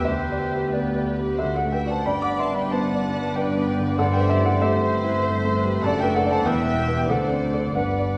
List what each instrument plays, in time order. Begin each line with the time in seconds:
Already playing: french horn section B3, clarinet B4
0.04 double bass section D2, cello section D2, french horn section G4, grand piano G4 E5, violin section G4 C5, viola section B4, flute E5, cor anglais G5
0.08 grand piano D2
0.32 grand piano D5
0.54 grand piano G4
0.73 grand piano B3 G4 D5, violin section G4 B4, flute D5
0.96 grand piano D5
1.21 grand piano G4
1.38 grand piano D2 G4 E5, french horn section A3 F#4, violin section F#4 C5, clarinet A4, flute E5, cor anglais F#5
1.56 grand piano A4 F#5, violin section D5, flute F#5
1.65 grand piano A3
1.72 grand piano B4 G5, violin section E5, flute G5
1.86 grand piano F#4 D5, violin section F#5
1.90 grand piano C5 A5, flute A5
2.05 double bass section G1, cello section G2, grand piano G2 D5 B5, french horn section B3 D4, violin section B4 G5, clarinet B4, viola section D5, cor anglais D5, flute B5
2.22 grand piano F#5 D6, violin section B5, flute D6
2.30 grand piano D5
2.39 grand piano E5 C6, violin section A5, flute C6
2.51 grand piano D4 B5
2.56 grand piano D5, violin section G5, flute B5
2.71 grand piano B3 C5 A5, viola section B4, violin section F#5, flute A5
2.95 grand piano D5
3.14 grand piano D4
3.36 violin section B4 D5, grand piano B4 D5 G5, flute G5
3.57 grand piano B3
3.79 grand piano D3
3.98 grand piano G2 A4 F#5, french horn section A3, clarinet A4, cor anglais C5, violin section C5 D5, viola section D5, flute F#5
4.13 grand piano B4 G5, violin section E5, flute G5
4.20 grand piano C5
4.30 grand piano G4 E5, violin section C5, flute E5
4.41 grand piano E4 F#5
4.46 grand piano A4, violin section D5, flute F#5
4.61 grand piano A3 G4 E5, french horn section C4, violin section C5, viola section C5, flute E5
4.82 grand piano C5
4.94 viola section B4
5.04 grand piano E4
5.24 grand piano C5, viola section C5
5.45 grand piano A3
5.56 viola section B4
5.64 grand piano G3
5.82 double bass section F#1, grand piano F#2 D5 A5, cello section F#2, french horn section A3 D4, viola section A4, cor anglais D5, violin section F#5, flute A5
5.87 violin section D5
6.00 grand piano A3 B4 G5, violin section E5, flute G5
6.15 grand piano A4 F#5, violin section D5, flute F#5
6.25 grand piano D4 D5
6.31 grand piano C5 A5, violin section F#5, flute A5
6.45 double bass section E1, grand piano E2 B4 G5, cello section E2, french horn section B3 E4, violin section B4 E5, clarinet B4, viola section B4, cor anglais E5, flute G5
6.66 grand piano B3
6.78 viola section G4
6.87 grand piano E4 B4
7.08 cello section D2, double bass section D2, grand piano D2 A4 F#5, french horn section C4 D4, viola section A4, clarinet C5, violin section C5 D5, cor anglais D5, flute F#5
7.30 grand piano C4
7.53 grand piano A4 D5
7.73 double bass section G1, cello section G2, grand piano G2 B4 F#5, french horn section B3 D4, clarinet B4, violin section B4 D5, viola section B4, flute F#5
7.99 grand piano D5